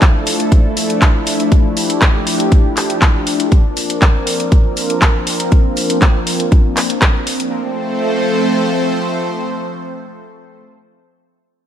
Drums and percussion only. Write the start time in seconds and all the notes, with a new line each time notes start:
0.02 kick, clap, closed hi-hat
0.27 open hi-hat
0.40 closed hi-hat
0.52 kick, closed hi-hat
0.77 open hi-hat
0.90 closed hi-hat
1.02 kick, clap, closed hi-hat
1.27 open hi-hat
1.40 closed hi-hat
1.52 kick, closed hi-hat
1.77 open hi-hat
1.90 closed hi-hat
2.02 kick, clap, closed hi-hat
2.27 open hi-hat
2.40 closed hi-hat
2.52 kick, closed hi-hat
2.77 clap, open hi-hat
2.90 closed hi-hat
3.02 kick, clap, closed hi-hat
3.27 open hi-hat
3.40 closed hi-hat
3.52 kick, closed hi-hat
3.77 open hi-hat
3.90 closed hi-hat
4.02 kick, clap, closed hi-hat
4.27 open hi-hat
4.40 closed hi-hat
4.52 kick, closed hi-hat
4.77 open hi-hat
4.90 closed hi-hat
5.02 kick, clap, closed hi-hat
5.27 open hi-hat
5.40 closed hi-hat
5.52 kick, closed hi-hat
5.77 open hi-hat
5.90 closed hi-hat
6.02 kick, clap, closed hi-hat
6.27 open hi-hat
6.40 closed hi-hat
6.52 kick, closed hi-hat
6.77 clap, open hi-hat
6.90 closed hi-hat
7.02 kick, clap, closed hi-hat
7.27 open hi-hat
7.40 closed hi-hat